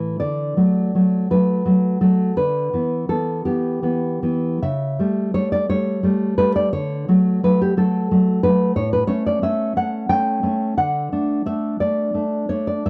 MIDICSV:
0, 0, Header, 1, 2, 480
1, 0, Start_track
1, 0, Key_signature, 2, "major"
1, 0, Tempo, 724638
1, 131, Time_signature, 6, 3, 24, 8
1, 2045, Tempo, 746269
1, 2525, Tempo, 796813
1, 3005, Tempo, 711744
1, 3485, Tempo, 696056
1, 4925, Tempo, 668896
1, 7325, Tempo, 693642
1, 8792, End_track
2, 0, Start_track
2, 0, Title_t, "Nylon-string guitar"
2, 0, Program_c, 0, 24
2, 0, Note_on_c, 0, 45, 62
2, 0, Note_on_c, 0, 52, 55
2, 0, Note_on_c, 0, 57, 50
2, 106, Note_off_c, 0, 45, 0
2, 130, Note_on_c, 0, 74, 79
2, 132, Note_off_c, 0, 52, 0
2, 134, Note_off_c, 0, 57, 0
2, 135, Note_on_c, 0, 50, 55
2, 370, Note_off_c, 0, 50, 0
2, 375, Note_on_c, 0, 54, 45
2, 379, Note_on_c, 0, 57, 49
2, 621, Note_off_c, 0, 54, 0
2, 624, Note_off_c, 0, 57, 0
2, 629, Note_on_c, 0, 54, 41
2, 633, Note_on_c, 0, 57, 45
2, 831, Note_off_c, 0, 74, 0
2, 856, Note_off_c, 0, 54, 0
2, 860, Note_off_c, 0, 57, 0
2, 864, Note_on_c, 0, 54, 41
2, 868, Note_on_c, 0, 57, 42
2, 868, Note_on_c, 0, 71, 74
2, 1087, Note_off_c, 0, 54, 0
2, 1094, Note_off_c, 0, 57, 0
2, 1095, Note_on_c, 0, 54, 47
2, 1102, Note_on_c, 0, 57, 48
2, 1309, Note_off_c, 0, 71, 0
2, 1323, Note_off_c, 0, 54, 0
2, 1327, Note_off_c, 0, 57, 0
2, 1331, Note_on_c, 0, 54, 49
2, 1331, Note_on_c, 0, 69, 66
2, 1335, Note_on_c, 0, 57, 47
2, 1541, Note_off_c, 0, 54, 0
2, 1543, Note_off_c, 0, 57, 0
2, 1554, Note_off_c, 0, 69, 0
2, 1567, Note_on_c, 0, 50, 58
2, 1569, Note_on_c, 0, 71, 82
2, 1797, Note_off_c, 0, 50, 0
2, 1811, Note_on_c, 0, 52, 44
2, 1818, Note_on_c, 0, 59, 46
2, 2028, Note_off_c, 0, 71, 0
2, 2038, Note_off_c, 0, 52, 0
2, 2043, Note_off_c, 0, 59, 0
2, 2046, Note_on_c, 0, 52, 39
2, 2048, Note_on_c, 0, 69, 80
2, 2051, Note_on_c, 0, 59, 45
2, 2272, Note_off_c, 0, 69, 0
2, 2275, Note_off_c, 0, 52, 0
2, 2279, Note_off_c, 0, 59, 0
2, 2280, Note_on_c, 0, 67, 69
2, 2283, Note_on_c, 0, 52, 40
2, 2287, Note_on_c, 0, 59, 44
2, 2512, Note_off_c, 0, 52, 0
2, 2516, Note_off_c, 0, 59, 0
2, 2520, Note_on_c, 0, 52, 48
2, 2524, Note_on_c, 0, 59, 48
2, 2755, Note_off_c, 0, 52, 0
2, 2758, Note_off_c, 0, 59, 0
2, 2762, Note_on_c, 0, 52, 50
2, 2765, Note_on_c, 0, 59, 52
2, 2978, Note_off_c, 0, 52, 0
2, 2980, Note_off_c, 0, 59, 0
2, 2980, Note_off_c, 0, 67, 0
2, 3001, Note_on_c, 0, 49, 62
2, 3002, Note_on_c, 0, 76, 85
2, 3242, Note_off_c, 0, 49, 0
2, 3249, Note_on_c, 0, 55, 50
2, 3254, Note_on_c, 0, 57, 51
2, 3463, Note_off_c, 0, 76, 0
2, 3476, Note_off_c, 0, 55, 0
2, 3480, Note_off_c, 0, 57, 0
2, 3484, Note_on_c, 0, 55, 43
2, 3485, Note_on_c, 0, 73, 83
2, 3488, Note_on_c, 0, 57, 47
2, 3602, Note_off_c, 0, 73, 0
2, 3608, Note_on_c, 0, 74, 85
2, 3719, Note_off_c, 0, 55, 0
2, 3719, Note_off_c, 0, 57, 0
2, 3724, Note_off_c, 0, 74, 0
2, 3726, Note_on_c, 0, 57, 51
2, 3728, Note_on_c, 0, 55, 41
2, 3729, Note_on_c, 0, 73, 84
2, 3952, Note_off_c, 0, 55, 0
2, 3958, Note_off_c, 0, 57, 0
2, 3960, Note_on_c, 0, 55, 52
2, 3967, Note_on_c, 0, 57, 57
2, 4183, Note_off_c, 0, 73, 0
2, 4192, Note_off_c, 0, 55, 0
2, 4197, Note_off_c, 0, 57, 0
2, 4199, Note_on_c, 0, 71, 100
2, 4200, Note_on_c, 0, 55, 51
2, 4205, Note_on_c, 0, 57, 59
2, 4319, Note_off_c, 0, 71, 0
2, 4323, Note_on_c, 0, 74, 82
2, 4418, Note_off_c, 0, 55, 0
2, 4420, Note_off_c, 0, 57, 0
2, 4438, Note_off_c, 0, 74, 0
2, 4439, Note_on_c, 0, 50, 61
2, 4441, Note_on_c, 0, 73, 90
2, 4677, Note_off_c, 0, 50, 0
2, 4686, Note_on_c, 0, 54, 53
2, 4690, Note_on_c, 0, 57, 55
2, 4903, Note_off_c, 0, 73, 0
2, 4919, Note_off_c, 0, 54, 0
2, 4926, Note_off_c, 0, 57, 0
2, 4927, Note_on_c, 0, 54, 45
2, 4932, Note_on_c, 0, 71, 82
2, 4935, Note_on_c, 0, 57, 49
2, 5049, Note_off_c, 0, 71, 0
2, 5057, Note_on_c, 0, 67, 87
2, 5160, Note_off_c, 0, 57, 0
2, 5161, Note_off_c, 0, 54, 0
2, 5168, Note_on_c, 0, 54, 46
2, 5169, Note_on_c, 0, 57, 49
2, 5171, Note_off_c, 0, 67, 0
2, 5173, Note_on_c, 0, 69, 80
2, 5405, Note_off_c, 0, 57, 0
2, 5407, Note_off_c, 0, 54, 0
2, 5415, Note_on_c, 0, 54, 52
2, 5415, Note_on_c, 0, 57, 56
2, 5625, Note_off_c, 0, 69, 0
2, 5636, Note_off_c, 0, 54, 0
2, 5643, Note_off_c, 0, 57, 0
2, 5644, Note_on_c, 0, 54, 53
2, 5644, Note_on_c, 0, 71, 98
2, 5651, Note_on_c, 0, 57, 57
2, 5857, Note_off_c, 0, 54, 0
2, 5861, Note_off_c, 0, 57, 0
2, 5871, Note_off_c, 0, 71, 0
2, 5878, Note_on_c, 0, 45, 58
2, 5879, Note_on_c, 0, 73, 81
2, 5997, Note_off_c, 0, 73, 0
2, 6000, Note_on_c, 0, 71, 91
2, 6101, Note_off_c, 0, 71, 0
2, 6104, Note_off_c, 0, 45, 0
2, 6104, Note_on_c, 0, 73, 91
2, 6107, Note_on_c, 0, 57, 50
2, 6110, Note_on_c, 0, 61, 53
2, 6229, Note_off_c, 0, 73, 0
2, 6241, Note_on_c, 0, 74, 82
2, 6347, Note_off_c, 0, 57, 0
2, 6349, Note_off_c, 0, 61, 0
2, 6353, Note_on_c, 0, 57, 45
2, 6358, Note_off_c, 0, 74, 0
2, 6358, Note_on_c, 0, 61, 51
2, 6361, Note_on_c, 0, 76, 88
2, 6590, Note_off_c, 0, 76, 0
2, 6591, Note_off_c, 0, 57, 0
2, 6592, Note_off_c, 0, 61, 0
2, 6598, Note_on_c, 0, 57, 47
2, 6602, Note_on_c, 0, 61, 47
2, 6603, Note_on_c, 0, 78, 74
2, 6827, Note_off_c, 0, 57, 0
2, 6832, Note_off_c, 0, 61, 0
2, 6832, Note_off_c, 0, 78, 0
2, 6835, Note_on_c, 0, 57, 50
2, 6836, Note_on_c, 0, 79, 99
2, 6840, Note_on_c, 0, 61, 49
2, 7069, Note_off_c, 0, 57, 0
2, 7076, Note_off_c, 0, 61, 0
2, 7077, Note_on_c, 0, 57, 48
2, 7084, Note_on_c, 0, 61, 54
2, 7297, Note_off_c, 0, 57, 0
2, 7301, Note_off_c, 0, 61, 0
2, 7302, Note_off_c, 0, 79, 0
2, 7323, Note_on_c, 0, 50, 59
2, 7326, Note_on_c, 0, 78, 79
2, 7552, Note_off_c, 0, 50, 0
2, 7566, Note_on_c, 0, 57, 42
2, 7568, Note_on_c, 0, 62, 52
2, 7777, Note_off_c, 0, 78, 0
2, 7788, Note_off_c, 0, 57, 0
2, 7792, Note_off_c, 0, 62, 0
2, 7796, Note_on_c, 0, 57, 41
2, 7800, Note_on_c, 0, 62, 43
2, 7802, Note_on_c, 0, 76, 76
2, 8026, Note_off_c, 0, 76, 0
2, 8029, Note_off_c, 0, 57, 0
2, 8032, Note_off_c, 0, 62, 0
2, 8036, Note_on_c, 0, 74, 75
2, 8037, Note_on_c, 0, 57, 43
2, 8040, Note_on_c, 0, 62, 40
2, 8263, Note_off_c, 0, 57, 0
2, 8269, Note_off_c, 0, 62, 0
2, 8271, Note_on_c, 0, 57, 39
2, 8278, Note_on_c, 0, 62, 43
2, 8494, Note_off_c, 0, 74, 0
2, 8505, Note_off_c, 0, 57, 0
2, 8506, Note_off_c, 0, 62, 0
2, 8512, Note_on_c, 0, 73, 81
2, 8513, Note_on_c, 0, 57, 42
2, 8515, Note_on_c, 0, 62, 47
2, 8637, Note_off_c, 0, 73, 0
2, 8638, Note_on_c, 0, 74, 73
2, 8739, Note_off_c, 0, 57, 0
2, 8740, Note_off_c, 0, 62, 0
2, 8764, Note_off_c, 0, 74, 0
2, 8765, Note_on_c, 0, 43, 51
2, 8767, Note_on_c, 0, 76, 81
2, 8792, Note_off_c, 0, 43, 0
2, 8792, Note_off_c, 0, 76, 0
2, 8792, End_track
0, 0, End_of_file